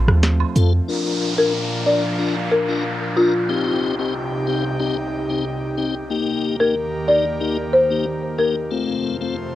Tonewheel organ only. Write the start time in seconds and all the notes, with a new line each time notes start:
0.56 C4 F4 A4
0.88 D4 F4 A#4
1.38 D4 F4 A#4
1.86 D4 F4 A#4
2.19 D4 F4 A#4
2.69 D4 F4 A#4
3.16 D4 F4 A#4
3.49 C4 D#4 G4
3.99 C4 D#4 G4
4.47 C4 D#4 G4
4.80 C4 D#4 G4
5.29 C4 D#4 G4
5.78 C4 D#4 G4
6.10 A#3 D#4 G4
6.60 A#3 D#4 G4
7.08 A#3 D#4 G4
7.40 A#3 D#4 G4
7.90 A#3 D#4 G4
8.38 A#3 D#4 G4
8.71 A3 C4 F4
9.21 A3 C4 F4